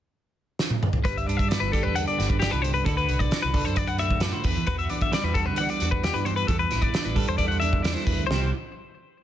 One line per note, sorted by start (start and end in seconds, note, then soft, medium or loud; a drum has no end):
0.59 snare medium
0.70 high tom medium
0.83 mid tom medium
0.93 floor tom medium
1.04 1.24 G1 medium
1.04 2.17 G2 medium
1.04 1.16 B4 medium
1.04 kick loud
1.04 closed hi-hat medium
1.17 1.27 E5 medium
1.17 closed hi-hat soft
1.27 1.56 G2 medium
1.27 1.94 D4 soft
1.27 1.37 D5 medium
1.27 closed hi-hat medium
1.37 1.48 E5 medium
1.37 kick medium
1.37 closed hi-hat soft
1.48 2.18 B3 medium
1.48 1.60 D5 medium
1.48 snare medium
1.48 closed hi-hat medium
1.60 1.86 G1 medium
1.60 1.72 B4 medium
1.72 2.84 D3 medium
1.72 2.84 G4 medium
1.72 1.83 A4 medium
1.72 kick medium
1.72 closed hi-hat medium
1.83 2.03 E2 medium
1.83 1.95 B4 medium
1.95 2.40 D4 medium
1.95 2.07 F#5 medium
1.95 closed hi-hat medium
2.07 2.29 D5 medium
2.07 closed hi-hat soft
2.18 2.47 G1 medium
2.18 2.83 G2 medium
2.18 2.85 B3 soft
2.18 snare soft
2.18 closed hi-hat medium
2.29 2.39 B4 medium
2.29 kick medium
2.40 2.85 D4 medium
2.40 2.51 G4 medium
2.40 snare loud
2.40 closed hi-hat medium
2.51 2.80 C2 medium
2.51 2.62 B4 medium
2.51 closed hi-hat soft
2.62 2.74 C5 medium
2.62 closed hi-hat medium
2.74 2.85 B4 medium
2.74 closed hi-hat soft
2.85 3.05 D2 medium
2.85 5.11 D3 medium
2.85 3.53 D4 soft
2.85 3.32 F#4 soft
2.85 2.97 A4 medium
2.85 3.07 B4 medium
2.85 kick loud
2.85 closed hi-hat medium
2.97 3.19 B4 medium
2.97 closed hi-hat soft
3.08 3.28 C2 medium
3.08 3.54 B4 medium
3.08 closed hi-hat soft
3.19 3.42 D5 medium
3.19 kick medium
3.19 closed hi-hat soft
3.31 3.98 F#4 medium
3.31 snare medium
3.31 closed hi-hat medium
3.42 3.62 C2 medium
3.42 3.65 B4 medium
3.42 closed hi-hat soft
3.54 4.48 D4 medium
3.54 3.75 A4 soft
3.54 kick medium
3.54 open hi-hat medium
3.65 4.32 F#2 medium
3.65 3.77 C5 medium
3.65 closed hi-hat soft
3.75 4.21 B4 medium
3.75 3.88 D5 medium
3.75 kick medium
3.75 closed hi-hat medium
3.87 3.99 F#5 medium
3.87 closed hi-hat soft
3.98 4.41 A2 medium
3.98 4.42 F#4 medium
3.98 4.22 E5 medium
3.98 closed hi-hat medium
4.11 kick medium
4.20 4.42 B4 medium
4.20 4.33 D5 medium
4.20 snare loud
4.20 closed hi-hat medium
4.32 4.44 C5 medium
4.32 closed hi-hat soft
4.44 4.54 E2 medium
4.44 5.58 E2 medium
4.44 4.66 B4 medium
4.44 kick medium
4.44 open hi-hat medium
4.56 4.66 E3 medium
4.56 closed hi-hat soft
4.67 4.86 E2 medium
4.67 5.35 F#4 medium
4.67 4.78 B4 medium
4.67 kick loud
4.67 closed hi-hat medium
4.79 4.90 E5 medium
4.79 closed hi-hat soft
4.90 5.18 E3 medium
4.90 5.60 D4 medium
4.90 5.01 D5 medium
4.90 closed hi-hat medium
5.01 5.13 E5 medium
5.01 kick medium
5.01 closed hi-hat soft
5.11 7.15 G3 medium
5.11 6.23 B4 medium
5.11 5.24 D5 medium
5.11 snare medium
5.11 closed hi-hat medium
5.23 5.48 E2 medium
5.23 5.35 B4 medium
5.34 5.81 F#4 medium
5.34 5.46 A4 medium
5.34 kick medium
5.34 closed hi-hat medium
5.46 5.65 D3 medium
5.46 5.57 B4 medium
5.56 6.24 E2 medium
5.56 6.29 D4 medium
5.56 5.70 F#5 medium
5.56 closed hi-hat medium
5.69 5.91 D5 medium
5.69 closed hi-hat soft
5.80 6.09 E2 medium
5.80 6.24 F#4 medium
5.80 closed hi-hat medium
5.91 6.03 B4 medium
5.91 kick medium
6.04 6.15 G4 medium
6.04 snare loud
6.04 closed hi-hat medium
6.14 6.43 G2 medium
6.14 6.25 B4 medium
6.14 closed hi-hat soft
6.25 6.48 E2 medium
6.25 6.36 C5 medium
6.25 closed hi-hat medium
6.36 6.47 B4 medium
6.36 closed hi-hat soft
6.47 6.67 E2 medium
6.47 7.60 E2 medium
6.47 6.59 A4 medium
6.47 kick medium
6.47 closed hi-hat medium
6.59 6.82 B4 medium
6.59 closed hi-hat soft
6.71 6.90 A1 medium
6.71 7.38 E4 soft
6.71 snare soft
6.71 closed hi-hat medium
6.82 7.05 D5 medium
6.82 kick medium
6.82 closed hi-hat soft
6.94 7.61 D4 soft
6.94 snare medium
6.94 closed hi-hat medium
7.05 7.24 A1 medium
7.05 7.28 B4 medium
7.05 closed hi-hat soft
7.15 8.26 G3 medium
7.15 8.27 A4 medium
7.15 kick medium
7.15 open hi-hat medium
7.28 7.94 E2 medium
7.28 7.38 C5 medium
7.28 closed hi-hat soft
7.38 7.82 E4 medium
7.38 7.48 D5 medium
7.38 kick medium
7.38 closed hi-hat medium
7.48 7.59 F#5 medium
7.48 closed hi-hat soft
7.60 8.29 E2 medium
7.60 8.27 D4 soft
7.60 7.82 E5 medium
7.60 closed hi-hat medium
7.73 kick medium
7.82 8.26 E4 medium
7.82 7.94 D5 medium
7.82 snare loud
7.82 closed hi-hat medium
7.94 8.05 C5 medium
7.94 snare soft
7.94 closed hi-hat soft
8.05 8.16 E2 medium
8.05 8.26 B4 medium
8.05 kick medium
8.05 open hi-hat medium
8.16 8.27 D2 medium
8.16 closed hi-hat soft
8.27 8.50 C2 medium
8.27 8.49 C5 medium
8.31 8.51 C3 medium
8.31 8.51 G3 medium
8.31 8.52 B3 soft
8.31 8.52 E4 soft
8.31 8.52 G4 soft
8.31 snare medium